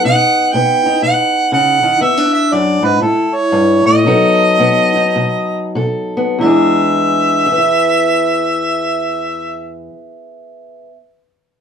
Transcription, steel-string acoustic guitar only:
0.00 0.55 B3 medium
0.05 0.51 B2 medium
0.05 0.85 D#4 medium
0.54 1.00 B2 medium
0.54 2.00 B3 medium
0.86 1.99 D#4 medium
1.02 1.48 B2 medium
1.52 1.82 C#3 medium
1.83 2.01 D#3 medium
2.00 2.47 E2 medium
2.00 2.17 B3 medium
2.17 3.01 D4 medium
2.52 2.82 F#2 medium
2.83 3.01 G#2 medium
3.01 3.48 A2 medium
3.01 4.03 E4 medium
3.52 3.85 G2 medium
3.86 4.05 A2 medium
4.05 4.55 B2 medium
4.05 6.38 F#3 medium
4.05 4.59 B3 medium
4.05 4.95 D#4 medium
4.05 5.75 A4 medium
4.59 5.12 B2 medium
4.59 6.16 B3 medium
4.96 6.37 D#4 medium
5.16 5.71 B2 medium
5.75 6.35 B2 medium
5.75 6.37 A4 medium
6.17 6.37 B3 medium
6.39 9.89 E2 medium
6.39 9.91 E3 medium
6.39 7.46 G#3 medium
6.45 7.49 D4 medium
6.45 7.46 G#4 medium
7.46 10.85 G#4 medium
7.52 10.91 B4 medium
7.58 10.97 E5 medium

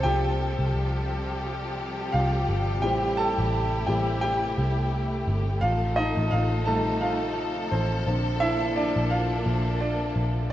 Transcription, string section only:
0.00 10.53 C3 medium
0.00 2.80 F3 medium
0.00 5.58 G3 medium
0.00 5.58 G4 medium
0.00 2.79 A4 medium
2.83 8.02 A3 medium
2.83 5.60 E4 medium
5.62 10.53 F3 medium
5.62 8.04 D#4 medium
5.62 10.53 A4 medium
8.05 10.53 A#3 medium
8.05 10.53 D4 medium

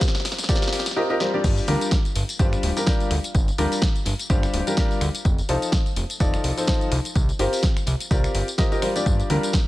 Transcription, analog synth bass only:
1.44 1.60 G1 loud
1.68 1.76 D2 medium
2.16 2.24 G1 medium
2.39 2.55 G1 loud
2.63 2.72 D1 medium
3.11 3.19 D2 loud
3.35 3.51 G1 loud
3.58 3.67 D2 medium
4.06 4.14 G1 medium
4.30 4.46 G1 loud
4.54 4.62 D1 medium
5.01 5.10 D2 loud
5.25 5.41 F1 loud
5.49 5.57 C2 medium
5.97 6.05 F1 medium
6.20 6.36 F1 loud
6.44 6.52 C2 medium
6.92 7.00 C2 loud
7.16 7.32 C2 loud
7.39 7.48 G1 medium
7.87 7.95 C2 medium
8.11 8.27 C2 loud
8.35 8.43 G1 medium
9.06 9.22 G1 medium
9.30 9.38 D2 medium

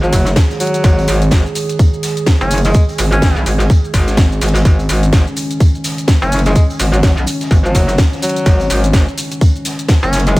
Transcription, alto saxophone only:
0.03 0.37 F#3 loud
0.60 1.28 F#3 loud
2.41 2.59 C#4 medium
2.65 2.83 G#3 medium
3.12 3.46 C#4 medium
6.22 6.40 C#4 medium
6.46 6.64 G#3 medium
6.93 7.00 F#3 medium
7.03 7.12 F#3 medium
7.65 7.99 F#3 loud
8.22 8.90 F#3 loud
10.03 10.21 C#4 medium
10.27 10.40 G#3 medium

